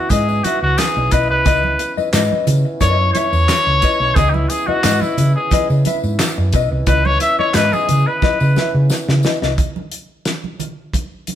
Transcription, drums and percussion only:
0.10 kick, closed hi-hat, tambourine, muted conga, high conga
0.29 tambourine
0.44 closed hi-hat, tambourine, muted conga, high conga
0.78 snare, clap, closed hi-hat, tambourine
1.11 kick, closed hi-hat, tambourine, muted conga
1.45 kick, closed hi-hat, tambourine, muted conga, low conga
1.64 high conga
1.79 closed hi-hat, tambourine
1.97 tambourine, high conga
2.13 snare, clap, closed hi-hat, tambourine, muted conga
2.32 high conga
2.47 closed hi-hat, tambourine, muted conga, low conga
2.80 kick, closed hi-hat, tambourine, muted conga, high conga
3.15 closed hi-hat, tambourine, muted conga, high conga
3.33 tambourine
3.49 snare, clap, closed hi-hat, tambourine, muted conga
3.82 kick, closed hi-hat, tambourine
4.16 kick, closed hi-hat, tambourine, muted conga, low conga
4.34 high conga
4.50 closed hi-hat, tambourine, muted conga
4.68 high conga
4.84 snare, clap, closed hi-hat, tambourine
5.02 tambourine, high conga
5.18 closed hi-hat, tambourine, muted conga, low conga
5.51 kick, closed hi-hat, tambourine, muted conga, high conga
5.70 tambourine
5.85 closed hi-hat, tambourine, muted conga, high conga
6.04 tambourine
6.19 snare, clap, closed hi-hat, tambourine
6.52 kick, closed hi-hat, tambourine, muted conga
6.86 kick, closed hi-hat, tambourine, muted conga, low conga
7.05 high conga
7.20 closed hi-hat, tambourine, muted conga
7.39 high conga
7.54 snare, clap, closed hi-hat, tambourine, muted conga
7.73 tambourine, high conga
7.89 closed hi-hat, tambourine, muted conga, low conga
8.22 kick, snare, tambourine, muted conga, high conga
8.40 tambourine
8.56 snare, tambourine, high conga
8.90 snare, tambourine, muted conga
9.09 snare
9.23 snare, tambourine, muted conga
9.42 snare
9.58 kick, closed hi-hat, muted conga, low conga
9.76 high conga
9.92 closed hi-hat
10.25 snare, closed hi-hat
10.44 high conga
10.60 closed hi-hat, muted conga, low conga
10.93 kick, closed hi-hat, high conga
11.27 closed hi-hat, muted conga, high conga

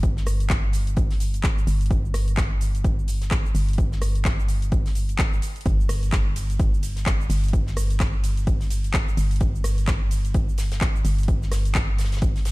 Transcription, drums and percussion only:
0.03 kick, closed hi-hat, cabasa
0.17 snare, cabasa
0.26 cross-stick, closed hi-hat, open hi-hat, cabasa
0.40 closed hi-hat, cabasa
0.50 kick, snare, clap, closed hi-hat, cabasa
0.73 closed hi-hat, open hi-hat, cabasa
0.87 closed hi-hat, cabasa
0.96 kick, closed hi-hat, cabasa
1.10 snare, open hi-hat, cabasa
1.20 closed hi-hat, open hi-hat, cabasa
1.34 closed hi-hat, cabasa
1.44 kick, snare, clap, closed hi-hat, cabasa
1.58 cabasa
1.67 closed hi-hat, open hi-hat, cabasa
1.81 closed hi-hat, cabasa
1.86 closed hi-hat
1.91 kick, closed hi-hat, cabasa
2.05 cabasa
2.14 cross-stick, closed hi-hat, open hi-hat, cabasa
2.28 closed hi-hat, cabasa
2.37 kick, snare, clap, closed hi-hat, cabasa
2.61 closed hi-hat, open hi-hat, cabasa
2.75 closed hi-hat, cabasa
2.84 kick, closed hi-hat, cabasa
2.99 cabasa
3.08 closed hi-hat, open hi-hat, cabasa
3.22 snare, closed hi-hat, cabasa
3.31 kick, snare, clap, closed hi-hat, cabasa
3.46 cabasa
3.54 open hi-hat, cabasa
3.69 closed hi-hat, cabasa
3.73 closed hi-hat
3.78 kick, closed hi-hat, cabasa
3.92 snare, cabasa
4.02 cross-stick, closed hi-hat, open hi-hat, cabasa
4.15 closed hi-hat, cabasa
4.25 kick, snare, clap, closed hi-hat, cabasa
4.40 cabasa
4.48 closed hi-hat, open hi-hat, cabasa
4.62 closed hi-hat, cabasa
4.72 kick, closed hi-hat, cabasa
4.86 snare, open hi-hat, cabasa
4.95 closed hi-hat, open hi-hat, cabasa
5.09 closed hi-hat, cabasa
5.19 kick, snare, clap, closed hi-hat, cabasa
5.33 cabasa
5.42 closed hi-hat, open hi-hat, cabasa
5.56 closed hi-hat, cabasa
5.61 closed hi-hat
5.66 kick, closed hi-hat, ride, cabasa
5.80 cabasa
5.89 cross-stick, closed hi-hat, open hi-hat, ride, cabasa
6.03 closed hi-hat, cabasa
6.12 kick, snare, clap, closed hi-hat, ride, cabasa
6.36 closed hi-hat, open hi-hat, ride, cabasa
6.50 closed hi-hat, cabasa
6.60 kick, closed hi-hat, ride, cabasa
6.74 cabasa
6.83 closed hi-hat, open hi-hat, ride, cabasa
6.96 snare, closed hi-hat, cabasa
7.06 kick, snare, clap, closed hi-hat, ride, cabasa
7.21 cabasa
7.29 open hi-hat, ride, cabasa
7.44 closed hi-hat, cabasa
7.48 closed hi-hat
7.53 kick, closed hi-hat, ride, cabasa
7.67 snare, cabasa
7.76 cross-stick, closed hi-hat, open hi-hat, ride, cabasa
7.90 closed hi-hat, cabasa
8.00 kick, snare, clap, closed hi-hat, ride, cabasa
8.24 closed hi-hat, open hi-hat, ride, cabasa
8.37 closed hi-hat, cabasa
8.47 kick, closed hi-hat, ride, cabasa
8.60 snare, open hi-hat, cabasa
8.70 closed hi-hat, open hi-hat, ride, cabasa
8.84 closed hi-hat, cabasa
8.93 kick, snare, clap, closed hi-hat, cabasa
9.08 cabasa
9.17 closed hi-hat, open hi-hat, ride, cabasa
9.31 closed hi-hat, cabasa
9.36 closed hi-hat
9.40 kick, closed hi-hat, ride, cabasa
9.55 cabasa
9.64 cross-stick, closed hi-hat, open hi-hat, ride, cabasa
9.78 closed hi-hat, cabasa
9.87 kick, snare, clap, closed hi-hat, ride, cabasa
10.11 closed hi-hat, open hi-hat, ride, cabasa
10.25 closed hi-hat, cabasa
10.34 kick, closed hi-hat, ride, cabasa
10.49 cabasa
10.58 snare, closed hi-hat, open hi-hat, ride, cabasa
10.72 snare, closed hi-hat, cabasa
10.81 kick, snare, clap, closed hi-hat, ride, cabasa
10.96 cabasa
11.05 closed hi-hat, open hi-hat, ride, cabasa
11.18 closed hi-hat, cabasa
11.23 closed hi-hat
11.28 kick, closed hi-hat, ride, cabasa
11.42 snare, cabasa
11.52 cross-stick, snare, closed hi-hat, open hi-hat, ride, cabasa
11.65 closed hi-hat, cabasa
11.75 kick, snare, clap, closed hi-hat, cabasa
11.99 snare, closed hi-hat, open hi-hat, ride, cabasa
12.04 snare, closed hi-hat
12.12 snare, closed hi-hat, cabasa
12.16 snare, closed hi-hat
12.22 kick, closed hi-hat, ride, cabasa
12.36 snare, open hi-hat, cabasa
12.45 snare, closed hi-hat, open hi-hat, ride, cabasa

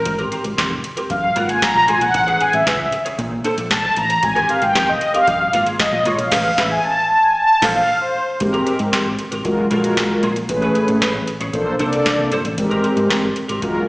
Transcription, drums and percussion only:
0.05 kick, closed hi-hat
0.19 closed hi-hat
0.32 closed hi-hat
0.44 closed hi-hat
0.58 kick, snare, closed hi-hat
0.84 closed hi-hat
0.97 closed hi-hat
1.10 kick, closed hi-hat
1.36 closed hi-hat
1.49 closed hi-hat
1.62 kick, snare, closed hi-hat
1.88 closed hi-hat
2.01 closed hi-hat
2.14 kick, closed hi-hat
2.28 closed hi-hat
2.41 closed hi-hat
2.53 closed hi-hat
2.66 kick, snare, closed hi-hat
2.92 closed hi-hat
3.06 closed hi-hat
3.19 kick, closed hi-hat
3.45 closed hi-hat
3.58 closed hi-hat
3.71 kick, snare, closed hi-hat
3.96 closed hi-hat
4.10 closed hi-hat
4.23 kick, closed hi-hat
4.36 closed hi-hat
4.49 closed hi-hat
4.62 closed hi-hat
4.75 kick, snare, closed hi-hat
5.01 closed hi-hat
5.14 closed hi-hat
5.27 kick, closed hi-hat
5.53 closed hi-hat
5.67 closed hi-hat
5.79 kick, snare, closed hi-hat
6.05 closed hi-hat
6.19 closed hi-hat
6.32 kick, snare, crash
6.58 kick, snare
7.62 kick, snare, crash
8.40 kick, closed hi-hat
8.54 closed hi-hat
8.67 closed hi-hat
8.79 closed hi-hat
8.93 kick, snare, closed hi-hat
9.19 closed hi-hat
9.32 closed hi-hat
9.45 kick, closed hi-hat
9.71 closed hi-hat
9.84 closed hi-hat
9.97 kick, snare, closed hi-hat
10.23 closed hi-hat
10.36 closed hi-hat
10.49 kick, closed hi-hat
10.62 closed hi-hat
10.75 closed hi-hat
10.88 closed hi-hat
11.01 kick, snare, closed hi-hat
11.27 closed hi-hat
11.41 closed hi-hat
11.53 kick, closed hi-hat
11.79 closed hi-hat
11.93 closed hi-hat
12.06 kick, snare, closed hi-hat
12.32 closed hi-hat
12.45 closed hi-hat
12.58 kick, closed hi-hat
12.71 closed hi-hat
12.84 closed hi-hat
12.97 closed hi-hat
13.10 kick, snare, closed hi-hat
13.36 closed hi-hat
13.49 closed hi-hat
13.62 kick, closed hi-hat

